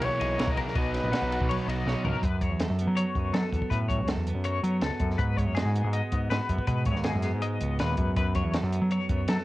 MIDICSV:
0, 0, Header, 1, 7, 480
1, 0, Start_track
1, 0, Tempo, 370828
1, 973, Time_signature, 4, 2, 24, 8
1, 12224, End_track
2, 0, Start_track
2, 0, Title_t, "Clean electric guitar"
2, 0, Program_c, 0, 27
2, 29, Note_on_c, 0, 73, 76
2, 261, Note_on_c, 0, 75, 73
2, 262, Note_off_c, 0, 73, 0
2, 737, Note_off_c, 0, 75, 0
2, 748, Note_on_c, 0, 70, 70
2, 980, Note_off_c, 0, 70, 0
2, 984, Note_on_c, 0, 75, 78
2, 1449, Note_off_c, 0, 75, 0
2, 1454, Note_on_c, 0, 78, 71
2, 1925, Note_off_c, 0, 78, 0
2, 1930, Note_on_c, 0, 73, 78
2, 2178, Note_off_c, 0, 73, 0
2, 2178, Note_on_c, 0, 75, 72
2, 2645, Note_off_c, 0, 75, 0
2, 2650, Note_on_c, 0, 70, 68
2, 2890, Note_off_c, 0, 70, 0
2, 2890, Note_on_c, 0, 71, 72
2, 3124, Note_off_c, 0, 71, 0
2, 3124, Note_on_c, 0, 73, 71
2, 3366, Note_off_c, 0, 73, 0
2, 3840, Note_on_c, 0, 73, 70
2, 4322, Note_on_c, 0, 69, 75
2, 4324, Note_off_c, 0, 73, 0
2, 4790, Note_on_c, 0, 71, 82
2, 4804, Note_off_c, 0, 69, 0
2, 5022, Note_off_c, 0, 71, 0
2, 5027, Note_on_c, 0, 73, 68
2, 5277, Note_off_c, 0, 73, 0
2, 5763, Note_on_c, 0, 73, 73
2, 6238, Note_on_c, 0, 69, 76
2, 6245, Note_off_c, 0, 73, 0
2, 6707, Note_on_c, 0, 71, 89
2, 6723, Note_off_c, 0, 69, 0
2, 6948, Note_off_c, 0, 71, 0
2, 6948, Note_on_c, 0, 73, 75
2, 7180, Note_on_c, 0, 68, 72
2, 7198, Note_off_c, 0, 73, 0
2, 7673, Note_on_c, 0, 75, 75
2, 7674, Note_off_c, 0, 68, 0
2, 8149, Note_off_c, 0, 75, 0
2, 8154, Note_on_c, 0, 71, 72
2, 8622, Note_off_c, 0, 71, 0
2, 8638, Note_on_c, 0, 71, 85
2, 8878, Note_off_c, 0, 71, 0
2, 8883, Note_on_c, 0, 73, 74
2, 9113, Note_on_c, 0, 68, 68
2, 9127, Note_off_c, 0, 73, 0
2, 9602, Note_off_c, 0, 68, 0
2, 9606, Note_on_c, 0, 75, 70
2, 10089, Note_off_c, 0, 75, 0
2, 10097, Note_on_c, 0, 71, 76
2, 10555, Note_off_c, 0, 71, 0
2, 10571, Note_on_c, 0, 71, 81
2, 10808, Note_off_c, 0, 71, 0
2, 10813, Note_on_c, 0, 73, 79
2, 11054, Note_off_c, 0, 73, 0
2, 11542, Note_on_c, 0, 73, 71
2, 12019, Note_off_c, 0, 73, 0
2, 12019, Note_on_c, 0, 69, 80
2, 12224, Note_off_c, 0, 69, 0
2, 12224, End_track
3, 0, Start_track
3, 0, Title_t, "Trumpet"
3, 0, Program_c, 1, 56
3, 60, Note_on_c, 1, 73, 96
3, 644, Note_off_c, 1, 73, 0
3, 1018, Note_on_c, 1, 71, 85
3, 2380, Note_off_c, 1, 71, 0
3, 12224, End_track
4, 0, Start_track
4, 0, Title_t, "Clean electric guitar"
4, 0, Program_c, 2, 27
4, 0, Note_on_c, 2, 54, 61
4, 0, Note_on_c, 2, 64, 52
4, 0, Note_on_c, 2, 68, 57
4, 26, Note_on_c, 2, 47, 63
4, 256, Note_off_c, 2, 68, 0
4, 272, Note_on_c, 2, 68, 54
4, 516, Note_on_c, 2, 70, 72
4, 742, Note_off_c, 2, 68, 0
4, 775, Note_on_c, 2, 68, 52
4, 949, Note_off_c, 2, 47, 0
4, 955, Note_off_c, 2, 70, 0
4, 956, Note_off_c, 2, 64, 0
4, 965, Note_off_c, 2, 68, 0
4, 1005, Note_on_c, 2, 47, 74
4, 1015, Note_on_c, 2, 66, 56
4, 1245, Note_on_c, 2, 63, 54
4, 1470, Note_off_c, 2, 66, 0
4, 1497, Note_on_c, 2, 66, 54
4, 1713, Note_off_c, 2, 66, 0
4, 1727, Note_on_c, 2, 66, 61
4, 1944, Note_off_c, 2, 54, 0
4, 1960, Note_on_c, 2, 54, 66
4, 2188, Note_off_c, 2, 66, 0
4, 2201, Note_on_c, 2, 66, 54
4, 2439, Note_on_c, 2, 73, 66
4, 2665, Note_off_c, 2, 66, 0
4, 2688, Note_on_c, 2, 66, 53
4, 2874, Note_off_c, 2, 54, 0
4, 2875, Note_off_c, 2, 73, 0
4, 2876, Note_off_c, 2, 47, 0
4, 2876, Note_off_c, 2, 63, 0
4, 2879, Note_off_c, 2, 66, 0
4, 2907, Note_on_c, 2, 42, 62
4, 3151, Note_on_c, 2, 54, 51
4, 3404, Note_on_c, 2, 69, 47
4, 3643, Note_on_c, 2, 59, 55
4, 3871, Note_off_c, 2, 54, 0
4, 3876, Note_on_c, 2, 54, 61
4, 4125, Note_off_c, 2, 59, 0
4, 4130, Note_on_c, 2, 59, 52
4, 4345, Note_off_c, 2, 69, 0
4, 4381, Note_on_c, 2, 69, 56
4, 4605, Note_off_c, 2, 59, 0
4, 4610, Note_on_c, 2, 59, 49
4, 4805, Note_off_c, 2, 69, 0
4, 4812, Note_off_c, 2, 42, 0
4, 4827, Note_on_c, 2, 42, 72
4, 5052, Note_off_c, 2, 54, 0
4, 5057, Note_on_c, 2, 54, 51
4, 5315, Note_on_c, 2, 69, 50
4, 5542, Note_off_c, 2, 59, 0
4, 5547, Note_on_c, 2, 59, 59
4, 5765, Note_off_c, 2, 54, 0
4, 5770, Note_on_c, 2, 54, 67
4, 5996, Note_off_c, 2, 59, 0
4, 6001, Note_on_c, 2, 59, 54
4, 6477, Note_off_c, 2, 42, 0
4, 6493, Note_on_c, 2, 42, 55
4, 6710, Note_off_c, 2, 42, 0
4, 6713, Note_off_c, 2, 69, 0
4, 6715, Note_on_c, 2, 44, 69
4, 6962, Note_off_c, 2, 54, 0
4, 6968, Note_on_c, 2, 56, 52
4, 7228, Note_on_c, 2, 66, 50
4, 7470, Note_off_c, 2, 59, 0
4, 7475, Note_on_c, 2, 59, 55
4, 7698, Note_off_c, 2, 56, 0
4, 7703, Note_on_c, 2, 56, 64
4, 7931, Note_off_c, 2, 59, 0
4, 7936, Note_on_c, 2, 59, 51
4, 8179, Note_off_c, 2, 66, 0
4, 8184, Note_on_c, 2, 66, 57
4, 8413, Note_off_c, 2, 59, 0
4, 8418, Note_on_c, 2, 59, 53
4, 8614, Note_off_c, 2, 44, 0
4, 8662, Note_on_c, 2, 44, 72
4, 8701, Note_off_c, 2, 66, 0
4, 8887, Note_off_c, 2, 56, 0
4, 8892, Note_on_c, 2, 56, 53
4, 9135, Note_on_c, 2, 66, 54
4, 9365, Note_off_c, 2, 59, 0
4, 9370, Note_on_c, 2, 59, 58
4, 9612, Note_off_c, 2, 56, 0
4, 9617, Note_on_c, 2, 56, 65
4, 9877, Note_off_c, 2, 59, 0
4, 9882, Note_on_c, 2, 59, 50
4, 10092, Note_off_c, 2, 44, 0
4, 10097, Note_on_c, 2, 46, 62
4, 10335, Note_off_c, 2, 46, 0
4, 10342, Note_on_c, 2, 44, 53
4, 10556, Note_off_c, 2, 44, 0
4, 10561, Note_on_c, 2, 42, 73
4, 10600, Note_off_c, 2, 56, 0
4, 10813, Note_on_c, 2, 54, 57
4, 11078, Note_off_c, 2, 66, 0
4, 11083, Note_on_c, 2, 69, 54
4, 11316, Note_off_c, 2, 59, 0
4, 11321, Note_on_c, 2, 59, 53
4, 11517, Note_off_c, 2, 54, 0
4, 11522, Note_on_c, 2, 54, 64
4, 11780, Note_off_c, 2, 59, 0
4, 11785, Note_on_c, 2, 59, 51
4, 12002, Note_off_c, 2, 69, 0
4, 12017, Note_on_c, 2, 69, 63
4, 12224, Note_off_c, 2, 42, 0
4, 12224, Note_off_c, 2, 54, 0
4, 12224, Note_off_c, 2, 59, 0
4, 12224, Note_off_c, 2, 69, 0
4, 12224, End_track
5, 0, Start_track
5, 0, Title_t, "Overdriven electric guitar"
5, 0, Program_c, 3, 29
5, 0, Note_on_c, 3, 52, 59
5, 0, Note_on_c, 3, 58, 65
5, 0, Note_on_c, 3, 64, 66
5, 489, Note_on_c, 3, 42, 97
5, 495, Note_off_c, 3, 52, 0
5, 495, Note_on_c, 3, 49, 83
5, 503, Note_off_c, 3, 58, 0
5, 511, Note_on_c, 3, 52, 90
5, 514, Note_off_c, 3, 64, 0
5, 518, Note_on_c, 3, 58, 90
5, 530, Note_on_c, 3, 64, 95
5, 716, Note_off_c, 3, 64, 0
5, 731, Note_on_c, 3, 64, 65
5, 739, Note_off_c, 3, 58, 0
5, 754, Note_off_c, 3, 52, 0
5, 754, Note_on_c, 3, 58, 57
5, 770, Note_on_c, 3, 52, 51
5, 953, Note_off_c, 3, 49, 0
5, 956, Note_off_c, 3, 42, 0
5, 957, Note_off_c, 3, 64, 0
5, 959, Note_on_c, 3, 47, 84
5, 969, Note_off_c, 3, 58, 0
5, 970, Note_off_c, 3, 52, 0
5, 975, Note_on_c, 3, 54, 84
5, 995, Note_on_c, 3, 59, 93
5, 1010, Note_on_c, 3, 63, 95
5, 1436, Note_off_c, 3, 47, 0
5, 1450, Note_off_c, 3, 54, 0
5, 1452, Note_on_c, 3, 47, 68
5, 1465, Note_on_c, 3, 54, 59
5, 1470, Note_off_c, 3, 59, 0
5, 1478, Note_off_c, 3, 63, 0
5, 1486, Note_on_c, 3, 59, 71
5, 1494, Note_on_c, 3, 63, 75
5, 1676, Note_off_c, 3, 63, 0
5, 1691, Note_on_c, 3, 63, 71
5, 1700, Note_off_c, 3, 59, 0
5, 1715, Note_on_c, 3, 59, 68
5, 1726, Note_off_c, 3, 54, 0
5, 1742, Note_on_c, 3, 54, 53
5, 1930, Note_off_c, 3, 47, 0
5, 2405, Note_off_c, 3, 54, 0
5, 2406, Note_on_c, 3, 47, 94
5, 2416, Note_off_c, 3, 59, 0
5, 2420, Note_on_c, 3, 54, 83
5, 2431, Note_off_c, 3, 63, 0
5, 2432, Note_on_c, 3, 59, 89
5, 2447, Note_on_c, 3, 63, 99
5, 2622, Note_off_c, 3, 63, 0
5, 2637, Note_on_c, 3, 63, 71
5, 2649, Note_off_c, 3, 59, 0
5, 2664, Note_off_c, 3, 54, 0
5, 2665, Note_on_c, 3, 59, 55
5, 2680, Note_on_c, 3, 54, 51
5, 2868, Note_off_c, 3, 63, 0
5, 2872, Note_off_c, 3, 47, 0
5, 2882, Note_off_c, 3, 59, 0
5, 2890, Note_off_c, 3, 54, 0
5, 12224, End_track
6, 0, Start_track
6, 0, Title_t, "Picked electric bass"
6, 0, Program_c, 4, 34
6, 273, Note_on_c, 4, 35, 92
6, 469, Note_off_c, 4, 35, 0
6, 513, Note_on_c, 4, 35, 79
6, 607, Note_off_c, 4, 35, 0
6, 744, Note_on_c, 4, 35, 79
6, 841, Note_off_c, 4, 35, 0
6, 981, Note_on_c, 4, 35, 82
6, 1283, Note_off_c, 4, 35, 0
6, 1344, Note_on_c, 4, 34, 85
6, 1441, Note_off_c, 4, 34, 0
6, 1578, Note_on_c, 4, 35, 94
6, 1779, Note_off_c, 4, 35, 0
6, 1822, Note_on_c, 4, 35, 80
6, 2021, Note_off_c, 4, 35, 0
6, 2161, Note_on_c, 4, 35, 91
6, 2369, Note_off_c, 4, 35, 0
6, 2405, Note_on_c, 4, 35, 78
6, 2509, Note_off_c, 4, 35, 0
6, 2644, Note_on_c, 4, 37, 75
6, 2748, Note_off_c, 4, 37, 0
6, 2889, Note_on_c, 4, 42, 77
6, 3254, Note_off_c, 4, 42, 0
6, 3254, Note_on_c, 4, 40, 68
6, 3455, Note_off_c, 4, 40, 0
6, 3494, Note_on_c, 4, 42, 86
6, 3695, Note_off_c, 4, 42, 0
6, 3718, Note_on_c, 4, 54, 90
6, 3926, Note_off_c, 4, 54, 0
6, 4085, Note_on_c, 4, 42, 81
6, 4290, Note_off_c, 4, 42, 0
6, 4315, Note_on_c, 4, 54, 85
6, 4422, Note_off_c, 4, 54, 0
6, 4564, Note_on_c, 4, 40, 71
6, 4667, Note_off_c, 4, 40, 0
6, 4801, Note_on_c, 4, 45, 85
6, 5158, Note_on_c, 4, 37, 75
6, 5177, Note_off_c, 4, 45, 0
6, 5366, Note_off_c, 4, 37, 0
6, 5393, Note_on_c, 4, 40, 84
6, 5603, Note_off_c, 4, 40, 0
6, 5628, Note_on_c, 4, 42, 86
6, 5943, Note_off_c, 4, 42, 0
6, 5999, Note_on_c, 4, 54, 87
6, 6207, Note_off_c, 4, 54, 0
6, 6237, Note_on_c, 4, 37, 75
6, 6343, Note_off_c, 4, 37, 0
6, 6476, Note_on_c, 4, 42, 84
6, 6685, Note_off_c, 4, 42, 0
6, 6715, Note_on_c, 4, 44, 83
6, 7081, Note_off_c, 4, 44, 0
6, 7081, Note_on_c, 4, 42, 79
6, 7288, Note_off_c, 4, 42, 0
6, 7312, Note_on_c, 4, 44, 91
6, 7523, Note_off_c, 4, 44, 0
6, 7557, Note_on_c, 4, 44, 89
6, 7766, Note_off_c, 4, 44, 0
6, 7925, Note_on_c, 4, 44, 83
6, 8131, Note_off_c, 4, 44, 0
6, 8158, Note_on_c, 4, 44, 77
6, 8264, Note_off_c, 4, 44, 0
6, 8403, Note_on_c, 4, 42, 78
6, 8508, Note_off_c, 4, 42, 0
6, 8639, Note_on_c, 4, 47, 90
6, 9003, Note_off_c, 4, 47, 0
6, 9003, Note_on_c, 4, 39, 79
6, 9210, Note_off_c, 4, 39, 0
6, 9259, Note_on_c, 4, 42, 97
6, 9459, Note_off_c, 4, 42, 0
6, 9499, Note_on_c, 4, 44, 78
6, 9802, Note_off_c, 4, 44, 0
6, 9854, Note_on_c, 4, 37, 81
6, 10069, Note_off_c, 4, 37, 0
6, 10104, Note_on_c, 4, 39, 79
6, 10315, Note_off_c, 4, 39, 0
6, 10328, Note_on_c, 4, 42, 67
6, 10546, Note_off_c, 4, 42, 0
6, 10573, Note_on_c, 4, 42, 84
6, 10936, Note_off_c, 4, 42, 0
6, 10936, Note_on_c, 4, 40, 72
6, 11139, Note_off_c, 4, 40, 0
6, 11171, Note_on_c, 4, 42, 89
6, 11377, Note_off_c, 4, 42, 0
6, 11408, Note_on_c, 4, 54, 90
6, 11615, Note_off_c, 4, 54, 0
6, 11768, Note_on_c, 4, 42, 81
6, 11976, Note_off_c, 4, 42, 0
6, 12022, Note_on_c, 4, 54, 83
6, 12121, Note_off_c, 4, 54, 0
6, 12224, End_track
7, 0, Start_track
7, 0, Title_t, "Drums"
7, 23, Note_on_c, 9, 51, 80
7, 152, Note_off_c, 9, 51, 0
7, 273, Note_on_c, 9, 51, 64
7, 402, Note_off_c, 9, 51, 0
7, 511, Note_on_c, 9, 51, 74
7, 522, Note_on_c, 9, 38, 95
7, 620, Note_on_c, 9, 36, 86
7, 641, Note_off_c, 9, 51, 0
7, 651, Note_off_c, 9, 38, 0
7, 742, Note_on_c, 9, 51, 57
7, 750, Note_off_c, 9, 36, 0
7, 872, Note_off_c, 9, 51, 0
7, 880, Note_on_c, 9, 38, 31
7, 979, Note_on_c, 9, 51, 76
7, 981, Note_on_c, 9, 36, 105
7, 1009, Note_off_c, 9, 38, 0
7, 1108, Note_off_c, 9, 51, 0
7, 1110, Note_off_c, 9, 36, 0
7, 1223, Note_on_c, 9, 51, 55
7, 1233, Note_on_c, 9, 38, 34
7, 1352, Note_off_c, 9, 51, 0
7, 1362, Note_off_c, 9, 38, 0
7, 1464, Note_on_c, 9, 51, 76
7, 1475, Note_on_c, 9, 38, 100
7, 1594, Note_off_c, 9, 51, 0
7, 1604, Note_off_c, 9, 38, 0
7, 1710, Note_on_c, 9, 51, 60
7, 1820, Note_on_c, 9, 36, 76
7, 1840, Note_off_c, 9, 51, 0
7, 1949, Note_off_c, 9, 36, 0
7, 1952, Note_on_c, 9, 51, 72
7, 2081, Note_off_c, 9, 51, 0
7, 2192, Note_on_c, 9, 51, 61
7, 2322, Note_off_c, 9, 51, 0
7, 2428, Note_on_c, 9, 38, 54
7, 2557, Note_off_c, 9, 38, 0
7, 2650, Note_on_c, 9, 43, 76
7, 2779, Note_off_c, 9, 43, 0
7, 2886, Note_on_c, 9, 36, 95
7, 2891, Note_on_c, 9, 42, 71
7, 3016, Note_off_c, 9, 36, 0
7, 3020, Note_off_c, 9, 42, 0
7, 3122, Note_on_c, 9, 36, 68
7, 3123, Note_on_c, 9, 42, 58
7, 3252, Note_off_c, 9, 36, 0
7, 3253, Note_off_c, 9, 42, 0
7, 3361, Note_on_c, 9, 42, 88
7, 3372, Note_on_c, 9, 38, 99
7, 3491, Note_off_c, 9, 42, 0
7, 3501, Note_off_c, 9, 38, 0
7, 3608, Note_on_c, 9, 42, 57
7, 3737, Note_off_c, 9, 42, 0
7, 3844, Note_on_c, 9, 42, 81
7, 3974, Note_off_c, 9, 42, 0
7, 4080, Note_on_c, 9, 36, 70
7, 4083, Note_on_c, 9, 42, 53
7, 4210, Note_off_c, 9, 36, 0
7, 4213, Note_off_c, 9, 42, 0
7, 4320, Note_on_c, 9, 42, 66
7, 4331, Note_on_c, 9, 38, 95
7, 4450, Note_off_c, 9, 42, 0
7, 4460, Note_off_c, 9, 38, 0
7, 4562, Note_on_c, 9, 36, 79
7, 4576, Note_on_c, 9, 42, 51
7, 4683, Note_off_c, 9, 36, 0
7, 4683, Note_on_c, 9, 36, 67
7, 4706, Note_off_c, 9, 42, 0
7, 4802, Note_off_c, 9, 36, 0
7, 4802, Note_on_c, 9, 36, 87
7, 4813, Note_on_c, 9, 42, 66
7, 4932, Note_off_c, 9, 36, 0
7, 4942, Note_off_c, 9, 42, 0
7, 5044, Note_on_c, 9, 36, 69
7, 5049, Note_on_c, 9, 42, 51
7, 5173, Note_off_c, 9, 36, 0
7, 5179, Note_off_c, 9, 42, 0
7, 5278, Note_on_c, 9, 42, 78
7, 5288, Note_on_c, 9, 38, 109
7, 5407, Note_off_c, 9, 42, 0
7, 5418, Note_off_c, 9, 38, 0
7, 5524, Note_on_c, 9, 42, 56
7, 5654, Note_off_c, 9, 42, 0
7, 5749, Note_on_c, 9, 42, 74
7, 5878, Note_off_c, 9, 42, 0
7, 6006, Note_on_c, 9, 42, 60
7, 6135, Note_off_c, 9, 42, 0
7, 6233, Note_on_c, 9, 42, 72
7, 6244, Note_on_c, 9, 38, 97
7, 6363, Note_off_c, 9, 42, 0
7, 6373, Note_off_c, 9, 38, 0
7, 6467, Note_on_c, 9, 42, 60
7, 6473, Note_on_c, 9, 36, 77
7, 6596, Note_off_c, 9, 42, 0
7, 6603, Note_off_c, 9, 36, 0
7, 6606, Note_on_c, 9, 38, 30
7, 6716, Note_on_c, 9, 36, 104
7, 6718, Note_on_c, 9, 42, 77
7, 6735, Note_off_c, 9, 38, 0
7, 6846, Note_off_c, 9, 36, 0
7, 6847, Note_off_c, 9, 42, 0
7, 6959, Note_on_c, 9, 36, 68
7, 6967, Note_on_c, 9, 42, 60
7, 7088, Note_off_c, 9, 36, 0
7, 7096, Note_off_c, 9, 42, 0
7, 7202, Note_on_c, 9, 42, 86
7, 7212, Note_on_c, 9, 38, 105
7, 7331, Note_off_c, 9, 42, 0
7, 7342, Note_off_c, 9, 38, 0
7, 7446, Note_on_c, 9, 42, 61
7, 7576, Note_off_c, 9, 42, 0
7, 7673, Note_on_c, 9, 42, 85
7, 7803, Note_off_c, 9, 42, 0
7, 7917, Note_on_c, 9, 42, 59
7, 7921, Note_on_c, 9, 36, 69
7, 8047, Note_off_c, 9, 42, 0
7, 8051, Note_off_c, 9, 36, 0
7, 8166, Note_on_c, 9, 42, 72
7, 8176, Note_on_c, 9, 38, 100
7, 8296, Note_off_c, 9, 42, 0
7, 8306, Note_off_c, 9, 38, 0
7, 8401, Note_on_c, 9, 42, 57
7, 8402, Note_on_c, 9, 36, 77
7, 8521, Note_off_c, 9, 36, 0
7, 8521, Note_on_c, 9, 36, 69
7, 8531, Note_off_c, 9, 42, 0
7, 8635, Note_on_c, 9, 42, 70
7, 8639, Note_off_c, 9, 36, 0
7, 8639, Note_on_c, 9, 36, 86
7, 8764, Note_off_c, 9, 42, 0
7, 8769, Note_off_c, 9, 36, 0
7, 8871, Note_on_c, 9, 42, 54
7, 8879, Note_on_c, 9, 36, 71
7, 9000, Note_off_c, 9, 42, 0
7, 9002, Note_on_c, 9, 38, 32
7, 9009, Note_off_c, 9, 36, 0
7, 9110, Note_on_c, 9, 42, 76
7, 9120, Note_off_c, 9, 38, 0
7, 9120, Note_on_c, 9, 38, 104
7, 9239, Note_off_c, 9, 42, 0
7, 9250, Note_off_c, 9, 38, 0
7, 9350, Note_on_c, 9, 42, 57
7, 9361, Note_on_c, 9, 38, 34
7, 9480, Note_off_c, 9, 42, 0
7, 9490, Note_off_c, 9, 38, 0
7, 9604, Note_on_c, 9, 42, 75
7, 9733, Note_off_c, 9, 42, 0
7, 9845, Note_on_c, 9, 42, 55
7, 9975, Note_off_c, 9, 42, 0
7, 10084, Note_on_c, 9, 42, 72
7, 10094, Note_on_c, 9, 38, 91
7, 10213, Note_off_c, 9, 42, 0
7, 10224, Note_off_c, 9, 38, 0
7, 10319, Note_on_c, 9, 42, 52
7, 10327, Note_on_c, 9, 36, 75
7, 10448, Note_off_c, 9, 42, 0
7, 10456, Note_off_c, 9, 36, 0
7, 10567, Note_on_c, 9, 42, 79
7, 10568, Note_on_c, 9, 36, 104
7, 10697, Note_off_c, 9, 42, 0
7, 10698, Note_off_c, 9, 36, 0
7, 10804, Note_on_c, 9, 42, 54
7, 10810, Note_on_c, 9, 36, 68
7, 10934, Note_off_c, 9, 42, 0
7, 10939, Note_off_c, 9, 36, 0
7, 11047, Note_on_c, 9, 42, 82
7, 11057, Note_on_c, 9, 38, 108
7, 11177, Note_off_c, 9, 42, 0
7, 11187, Note_off_c, 9, 38, 0
7, 11291, Note_on_c, 9, 42, 62
7, 11420, Note_off_c, 9, 42, 0
7, 11529, Note_on_c, 9, 42, 87
7, 11659, Note_off_c, 9, 42, 0
7, 11768, Note_on_c, 9, 42, 65
7, 11771, Note_on_c, 9, 36, 78
7, 11898, Note_off_c, 9, 42, 0
7, 11900, Note_off_c, 9, 36, 0
7, 12009, Note_on_c, 9, 42, 86
7, 12020, Note_on_c, 9, 38, 97
7, 12139, Note_off_c, 9, 42, 0
7, 12149, Note_off_c, 9, 38, 0
7, 12224, End_track
0, 0, End_of_file